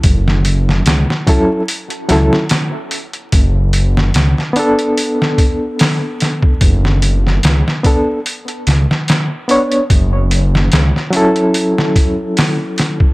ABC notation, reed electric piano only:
X:1
M:4/4
L:1/8
Q:"Swing 16ths" 1/4=73
K:F#m
V:1 name="Reed electric piano"
[F,CEA]3 [F,CEA] z [F,CEA] z2 | z3 [B,DA]4- [B,DA]- | [B,DA]3 [B,DA] z3 [B,Dc] | z3 [F,CEA]4- [F,CEA] |]